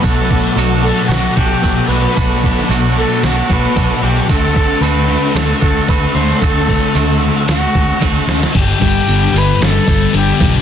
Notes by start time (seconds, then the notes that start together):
Already playing: F#5 B5
0.01 B1 B2 F#3 A3 B3 D4 F#4 A4 D6, kick, open hi-hat
0.29 F#3 B3, kick
0.55 B1 B2 F#3 A3 B3 D4 F#4, open hi-hat
0.82 F#3 B3 A4
1.07 B1 F#3 A3 D4 F#4, open hi-hat
1.11 F#4, snare
1.36 B1 A3 D4 F#4 G4, kick
1.62 B1 B2 F#3 A3 B3 D4 F#4, kick, open hi-hat
1.87 B1 B3 D4 F#4 B4
1.92 F#3 A3
2.15 B1 B2 F#3 A3 B3 D4 F#4, kick, open hi-hat
2.42 F#3 B3, kick
2.59 snare
2.69 B1 B2 F#3 A3 B3 D4 F#4, open hi-hat
2.96 F#3 B3 A4
3.23 B1 F#3 A3 D4 F#4, snare, open hi-hat
3.49 B1 A3 D4 F#4 B4, kick
3.75 B1 B2 F#3 A3 B3 D4 F#4, kick, open hi-hat
4.01 B1 F#3 A3 B3 D4 F#4 G4
4.29 D2 D3 A3 C4 D4 F#4 A4 A5, kick, open hi-hat
4.55 A3 D4, kick
4.80 D2 D3 A3 C4 D4 F#4 B4, open hi-hat
5.08 A3 D4
5.34 D2 D3 A3 C4 F#4 A4, snare, open hi-hat
5.59 D2 F#4 A4, kick
5.63 A3 C4
5.88 D2 D3 A3 C4 D4 F#4 B4, kick, open hi-hat
6.14 D2 A3 C4 D4 F#4 C5
6.39 D2 D3 A3 A4 E6, kick, open hi-hat
6.43 C4 D4 F#4
6.67 A3 D4, kick
6.94 D2 D3 A3 C4 D4 F#4, open hi-hat
7.21 A3 D4
7.48 D2 D3 A3 C4 F#4, snare, open hi-hat
7.74 D2 A3 C4 F#4, kick
7.99 D2 D3 A3 C4 D4 F#4, kick, snare, open hi-hat
8.26 D2 A3 C4 D4 F#4, snare
8.30 A3
8.43 snare
8.53 G1 G2 D3 G3 G4, kick, crash, ride
8.80 G1 D3 G3, kick, ride
9.05 G1 G2 D3 G3, ride
9.32 G1 D3 G3
9.36 B4, ride
9.60 G1 A4, snare, ride
9.84 G1 D3 G3, kick
9.88 ride
10.12 G1 G2 D3 G3, ride
10.16 G4
10.40 B1, kick, snare, ride